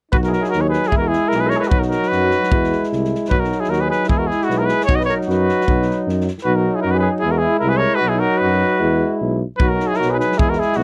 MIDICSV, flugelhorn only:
0, 0, Header, 1, 2, 480
1, 0, Start_track
1, 0, Key_signature, 5, "major"
1, 0, Tempo, 395517
1, 153, Time_signature, 2, 2, 24, 8
1, 7352, Tempo, 391645
1, 13203, End_track
2, 0, Start_track
2, 0, Title_t, "Flugelhorn"
2, 0, Program_c, 0, 56
2, 153, Note_on_c, 0, 66, 74
2, 213, Note_off_c, 0, 66, 0
2, 270, Note_on_c, 0, 66, 57
2, 334, Note_on_c, 0, 64, 45
2, 352, Note_off_c, 0, 66, 0
2, 370, Note_on_c, 0, 66, 57
2, 388, Note_off_c, 0, 64, 0
2, 482, Note_on_c, 0, 64, 53
2, 500, Note_off_c, 0, 66, 0
2, 568, Note_off_c, 0, 64, 0
2, 575, Note_on_c, 0, 66, 70
2, 706, Note_on_c, 0, 70, 49
2, 724, Note_off_c, 0, 66, 0
2, 726, Note_on_c, 0, 68, 60
2, 744, Note_off_c, 0, 70, 0
2, 819, Note_off_c, 0, 68, 0
2, 826, Note_on_c, 0, 68, 77
2, 1089, Note_on_c, 0, 64, 78
2, 1107, Note_off_c, 0, 68, 0
2, 1213, Note_off_c, 0, 64, 0
2, 1221, Note_on_c, 0, 66, 48
2, 1319, Note_on_c, 0, 64, 70
2, 1338, Note_off_c, 0, 66, 0
2, 1519, Note_off_c, 0, 64, 0
2, 1519, Note_on_c, 0, 64, 76
2, 1647, Note_on_c, 0, 68, 68
2, 1665, Note_off_c, 0, 64, 0
2, 1779, Note_on_c, 0, 70, 91
2, 1797, Note_off_c, 0, 68, 0
2, 1894, Note_on_c, 0, 68, 69
2, 1913, Note_off_c, 0, 70, 0
2, 1943, Note_on_c, 0, 70, 83
2, 1962, Note_off_c, 0, 68, 0
2, 2034, Note_on_c, 0, 66, 71
2, 2053, Note_off_c, 0, 70, 0
2, 2164, Note_off_c, 0, 66, 0
2, 2164, Note_on_c, 0, 66, 51
2, 2292, Note_off_c, 0, 66, 0
2, 2292, Note_on_c, 0, 66, 76
2, 2532, Note_off_c, 0, 66, 0
2, 2532, Note_on_c, 0, 66, 78
2, 3507, Note_off_c, 0, 66, 0
2, 4010, Note_on_c, 0, 66, 69
2, 4103, Note_off_c, 0, 66, 0
2, 4103, Note_on_c, 0, 66, 58
2, 4372, Note_on_c, 0, 64, 63
2, 4390, Note_off_c, 0, 66, 0
2, 4507, Note_on_c, 0, 66, 72
2, 4525, Note_off_c, 0, 64, 0
2, 4633, Note_on_c, 0, 68, 64
2, 4651, Note_off_c, 0, 66, 0
2, 4714, Note_off_c, 0, 68, 0
2, 4722, Note_on_c, 0, 68, 73
2, 4926, Note_off_c, 0, 68, 0
2, 4933, Note_on_c, 0, 64, 71
2, 5086, Note_on_c, 0, 66, 62
2, 5104, Note_off_c, 0, 64, 0
2, 5200, Note_on_c, 0, 64, 69
2, 5218, Note_off_c, 0, 66, 0
2, 5446, Note_on_c, 0, 59, 75
2, 5464, Note_off_c, 0, 64, 0
2, 5607, Note_on_c, 0, 66, 57
2, 5626, Note_off_c, 0, 59, 0
2, 5702, Note_on_c, 0, 68, 81
2, 5721, Note_off_c, 0, 66, 0
2, 5925, Note_off_c, 0, 68, 0
2, 5932, Note_on_c, 0, 66, 81
2, 6067, Note_on_c, 0, 71, 68
2, 6085, Note_off_c, 0, 66, 0
2, 6165, Note_off_c, 0, 71, 0
2, 6183, Note_on_c, 0, 70, 79
2, 6285, Note_off_c, 0, 70, 0
2, 6395, Note_on_c, 0, 66, 86
2, 7302, Note_off_c, 0, 66, 0
2, 7830, Note_on_c, 0, 66, 78
2, 7967, Note_off_c, 0, 66, 0
2, 7967, Note_on_c, 0, 66, 65
2, 8214, Note_on_c, 0, 64, 54
2, 8232, Note_off_c, 0, 66, 0
2, 8317, Note_off_c, 0, 64, 0
2, 8333, Note_on_c, 0, 66, 67
2, 8441, Note_on_c, 0, 68, 64
2, 8460, Note_off_c, 0, 66, 0
2, 8525, Note_off_c, 0, 68, 0
2, 8532, Note_on_c, 0, 68, 87
2, 8646, Note_off_c, 0, 68, 0
2, 8759, Note_on_c, 0, 64, 72
2, 8890, Note_on_c, 0, 66, 68
2, 8908, Note_off_c, 0, 64, 0
2, 8993, Note_on_c, 0, 64, 74
2, 9011, Note_off_c, 0, 66, 0
2, 9216, Note_off_c, 0, 64, 0
2, 9224, Note_on_c, 0, 64, 81
2, 9351, Note_on_c, 0, 68, 74
2, 9369, Note_off_c, 0, 64, 0
2, 9463, Note_on_c, 0, 70, 88
2, 9482, Note_off_c, 0, 68, 0
2, 9684, Note_on_c, 0, 66, 85
2, 9703, Note_off_c, 0, 70, 0
2, 9843, Note_on_c, 0, 64, 63
2, 9861, Note_off_c, 0, 66, 0
2, 9970, Note_on_c, 0, 66, 80
2, 9988, Note_off_c, 0, 64, 0
2, 10232, Note_off_c, 0, 66, 0
2, 10232, Note_on_c, 0, 66, 83
2, 11194, Note_off_c, 0, 66, 0
2, 11701, Note_on_c, 0, 66, 71
2, 11849, Note_off_c, 0, 66, 0
2, 11849, Note_on_c, 0, 66, 63
2, 12083, Note_on_c, 0, 64, 60
2, 12102, Note_off_c, 0, 66, 0
2, 12173, Note_on_c, 0, 66, 76
2, 12191, Note_off_c, 0, 64, 0
2, 12311, Note_on_c, 0, 68, 57
2, 12330, Note_off_c, 0, 66, 0
2, 12351, Note_off_c, 0, 68, 0
2, 12351, Note_on_c, 0, 68, 67
2, 12400, Note_off_c, 0, 68, 0
2, 12410, Note_on_c, 0, 68, 68
2, 12646, Note_on_c, 0, 64, 71
2, 12664, Note_off_c, 0, 68, 0
2, 12798, Note_on_c, 0, 66, 61
2, 12817, Note_off_c, 0, 64, 0
2, 12876, Note_on_c, 0, 64, 74
2, 12894, Note_off_c, 0, 66, 0
2, 13137, Note_on_c, 0, 59, 67
2, 13155, Note_off_c, 0, 64, 0
2, 13203, Note_off_c, 0, 59, 0
2, 13203, End_track
0, 0, End_of_file